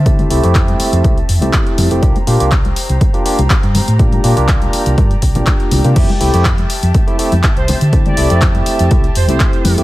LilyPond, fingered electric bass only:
\new Staff \with { instrumentName = "Fingered electric bass" } { \clef bass \time 4/4 \key f \major \tempo 4 = 122 d16 r16 c,16 f,8 r8 f,16 r8 f,16 c,16 r8 f,16 f,,16 | c,16 r16 bes,16 c,8 r8 c,16 r8. c,16 r16 g,16 r16 a,16~ | a,16 r16 bes,16 c,8 r8 c,16 g,16 r16 c,16 bes,,16 r8 c,16 c16 | r8 c,16 f,8 r8 f,16 r8. f,16 r16 c,16 r16 d16~ |
d16 r16 c,16 f,8 r8 f,16 r8 f,16 c,16 r8 f,16 f,,16 | }